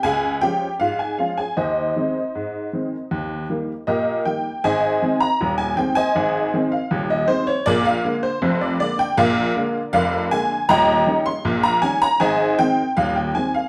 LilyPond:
<<
  \new Staff \with { instrumentName = "Honky-tonk piano" } { \time 2/4 \key aes \major \tempo 4 = 79 <aes' f'' aes''>8 <g' g''>8 <f' f''>16 <aes' aes''>16 <f' f''>16 <aes' aes''>16 | <ees' c'' ees''>2~ | <ees' c'' ees''>4 <g' bes' ees''>8 g''8 | <c'' ees'' aes''>8. bes''8 aes''16 g''16 <c'' ees'' aes''>16~ |
<c'' ees'' aes''>8. f''8 ees''16 c''16 des''16 | <aes' bes' d''>16 f''8 c''8 d''16 d''16 g''16 | <bes' d'' f''>4 <bes' d'' f''>8 aes''8 | <ees'' g'' bes''>8. c'''8 bes''16 aes''16 bes''16 |
<c'' ees'' aes''>8 g''8 f''16 g''16 aes''16 f''16 | }
  \new Staff \with { instrumentName = "Honky-tonk piano" } { \clef bass \time 2/4 \key aes \major des,8 <f aes des'>8 aes,8 <f aes des'>8 | ees,8 <ees aes c'>8 aes,8 <ees aes c'>8 | ees,8 <ees g bes>8 bes,8 <ees g bes>8 | <aes,, aes,>8 <ees aes c'>8 <ees,, ees,>8 <ees aes c'>8 |
<aes,, aes,>8 <ees aes c'>8 <ees,, ees,>8 <ees aes c'>8 | <bes,, bes,>8 <d aes bes>8 <f,, f,>8 <d aes bes>8 | <bes,, bes,>8 <d aes bes>8 <f,, f,>8 <d aes bes>8 | <ees,, ees,>8 <ees g des'>8 <bes,, bes,>8 <ees g des'>8 |
<aes,, aes,>8 <ees aes c'>8 <ees,, ees,>8 <ees aes c'>8 | }
>>